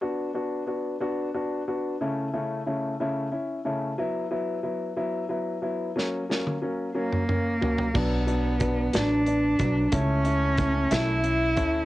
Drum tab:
CC |------------|------------|------------|------------|
HH |------------|------------|------------|------------|
SD |------------|------------|------------|o-o---------|
T1 |------------|------------|------------|---o--------|
T2 |------------|------------|------------|-------oo---|
FT |------------|------------|------------|----------oo|
BD |------------|------------|------------|------------|

CC |x-----------|------------|
HH |--x-x-x-x-x-|x-x-x-x-x-x-|
SD |------o-----|------o-----|
T1 |------------|------------|
T2 |------------|------------|
FT |------------|------------|
BD |o---o-----o-|o---o-----o-|